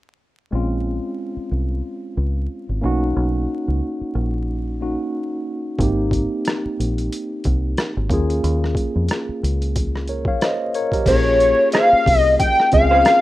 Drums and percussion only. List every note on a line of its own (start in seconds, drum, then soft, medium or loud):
5.79 kick medium
5.79 closed hi-hat medium
6.11 kick medium
6.11 closed hi-hat medium
6.45 cross-stick medium
6.45 closed hi-hat medium
6.80 closed hi-hat medium
6.98 closed hi-hat soft
7.12 closed hi-hat medium
7.44 kick medium
7.44 closed hi-hat soft
7.77 cross-stick loud
7.77 closed hi-hat medium
8.10 kick medium
8.10 closed hi-hat soft
8.30 closed hi-hat soft
8.44 closed hi-hat medium
8.64 cross-stick soft
8.75 kick medium
8.75 closed hi-hat medium
9.08 cross-stick medium
9.08 closed hi-hat medium
9.44 closed hi-hat medium
9.62 closed hi-hat soft
9.76 kick medium
9.76 closed hi-hat medium
9.96 cross-stick soft
10.08 closed hi-hat soft
10.25 kick medium
10.41 cross-stick loud
10.41 closed hi-hat medium
10.74 closed hi-hat medium
10.92 kick medium
10.92 closed hi-hat soft
11.06 kick loud
11.06 closed hi-hat medium
11.06 crash medium
11.40 closed hi-hat medium
11.72 cross-stick medium
11.72 closed hi-hat medium
12.06 kick medium
12.06 open hi-hat soft
12.40 kick medium
12.40 closed hi-hat medium
12.60 cross-stick soft
12.72 kick medium
12.72 closed hi-hat medium
13.05 cross-stick medium
13.05 closed hi-hat medium